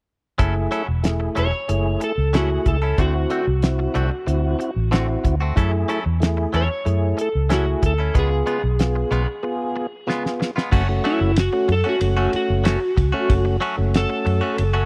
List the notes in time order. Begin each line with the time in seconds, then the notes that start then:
0.38 F#1 F#3 A3 C#4 E4 G#4 A4, kick, closed hi-hat
0.55 muted clean electric guitar stroke
0.71 F#3 C#4 E4 A4, closed hi-hat
0.88 E1, muted clean electric guitar stroke
1.03 A3 E4 G#4, snare, closed hi-hat
1.20 muted clean electric guitar stroke
1.35 E1 F#3 C#4 E4 A4 C#5, closed hi-hat
1.53 muted clean electric guitar stroke
1.68 F#1 A3 E4 G#4, muted clean electric guitar stroke, closed hi-hat
2.00 A4, muted clean electric guitar stroke, closed hi-hat
2.18 C#2
2.33 F#3 A3 C#4 E4 F#4 G#4 A4, snare, closed hi-hat
2.50 muted clean electric guitar stroke
2.66 C#2 A4, muted clean electric guitar stroke, kick, closed hi-hat
2.82 C#4 E4 A4
2.98 D2 D3 A3 C4 E4 F#4, kick, closed hi-hat
3.30 D3 A3 C4 F#4, closed hi-hat
3.47 C2, muted clean electric guitar stroke
3.62 C4 E4 F#4, snare, closed hi-hat
3.79 muted clean electric guitar stroke
3.94 C2 D3 A3 C4 F#4, closed hi-hat
4.11 muted clean electric guitar stroke
4.27 D2 C4 E4 F#4, muted clean electric guitar stroke, closed hi-hat
4.59 muted clean electric guitar stroke, closed hi-hat
4.76 A1
4.91 D3 A3 C4 E4 F#4, snare, closed hi-hat
5.24 D2, muted clean electric guitar stroke, kick, closed hi-hat
5.40 A3 C4 F#4
5.56 F#2 F#3 A3 C#4 E4 G#4 A4, kick, closed hi-hat
5.73 muted clean electric guitar stroke
5.88 F#3 C#4 E4 A4, closed hi-hat
6.05 E2, muted clean electric guitar stroke
6.20 A3 E4 G#4, snare, closed hi-hat
6.37 muted clean electric guitar stroke
6.53 E2 F#3 C#4 E4 A4 C#5, closed hi-hat
6.70 muted clean electric guitar stroke
6.85 F#2 A3 E4 G#4, muted clean electric guitar stroke, closed hi-hat
7.17 muted clean electric guitar stroke, closed hi-hat
7.21 A4
7.35 C#2
7.50 F#3 A3 C#4 E4 F#4 G#4 A4, snare, closed hi-hat
7.66 muted clean electric guitar stroke
7.82 D2 A4, muted clean electric guitar stroke, kick, closed hi-hat
7.98 C#4 E4 A4
8.14 C#2 C#3 G#3 B3 F4 G#4, kick, closed hi-hat
8.19 G#4
8.31 muted clean electric guitar stroke
8.46 C#3 G#3 B3 F4, closed hi-hat
8.63 B1, muted clean electric guitar stroke
8.79 B3 F4 G#4, snare, closed hi-hat
8.96 muted clean electric guitar stroke
9.11 B1 C#3 G#3 B3 F4, closed hi-hat
9.43 B3 F4 G#4, muted clean electric guitar stroke
9.76 muted clean electric guitar stroke
10.07 C#3 G#3 B3 F4 G#4, snare
10.25 muted clean electric guitar stroke, snare
10.40 muted clean electric guitar stroke, snare
10.56 G#3 B3 F4, snare
10.71 F#1 F#3 A3 C#4 F#4, kick, crash
10.88 A3 C#4 F#4, muted clean electric guitar stroke
11.04 F#3 A3 C#4 E4 F#4, ride
11.21 F#1, muted clean electric guitar stroke
11.36 F#4, snare, ride
11.52 A3 C#4 F#4, muted clean electric guitar stroke
11.68 F#2 A4, muted clean electric guitar stroke, ride
11.84 A3 C#4 F#4
11.89 F#4
12.00 F#1 A3 C#4 F#4, muted clean electric guitar stroke, ride
12.17 F#3 A3 C#4 F#4
12.33 F#4, muted fingered electric bass stroke, ride
12.50 F#1
12.64 F#3 A3 C#4 F#4, snare, ride
12.81 muted clean electric guitar stroke
12.97 C#2, muted clean electric guitar stroke, kick, ride
13.12 A3 C#4 F#4
13.30 F#1, kick, ride
13.45 muted clean electric guitar stroke
13.61 F#3 A3 C#4 F#4, ride
13.77 F#1 A3 C#4 F#4, muted clean electric guitar stroke
13.94 A4, snare, ride
14.10 muted clean electric guitar stroke
14.25 F#2, muted clean electric guitar stroke, ride
14.41 A3 C#4 F#4
14.57 F#1, muted clean electric guitar stroke, ride
14.73 F#3 A3 C#4 F#4